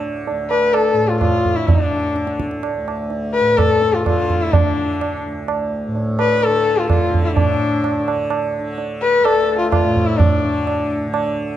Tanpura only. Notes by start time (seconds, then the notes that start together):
Already playing: D2 A2 D3
0.31 D2
0.93 A2
1.55 D3
2.16 D3
2.77 D2
3.40 A2
4.02 D3
4.64 D3
5.26 D2
5.87 A2
6.47 D3
7.10 D3
7.36 A2
7.99 D3
8.59 D3
9.21 D2
9.84 A2
10.44 D3
11.07 D3